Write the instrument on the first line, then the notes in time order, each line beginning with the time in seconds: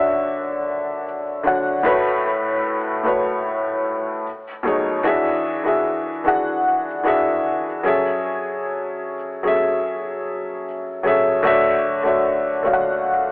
felt piano
Already playing: D3 D4 F#4 C#5 E5
1.43 D3 D4 F#4 C#5
1.47 F#5
1.83 A2 A3 F#4 B4
1.87 C#5
3.03 A2 A3 F#4 B4
3.07 C#5
4.63 B2 F#3 A3 D#4 G#4
4.67 C#5
5.03 E3 D4 F#4 G#4
5.08 E5
5.63 E3 D4 F#4 G#4
5.68 E5
6.24 E3 D4 F#4 G#4
6.28 F#5
7.03 E3 D4 F#4 G#4
7.08 E5
7.83 F#3 C#4 G#4 A4
7.88 E5
9.43 F#3 C#4 G#4 A4
9.47 E5
11.03 F#3 C#4 G#4 A4
11.07 E5
11.43 D3 A3 F#4 C#5
11.47 E5
12.03 D3 A3 F#4 C#5
12.07 E5
12.63 D3 A3 F#4 C#5 F5
12.74 F#5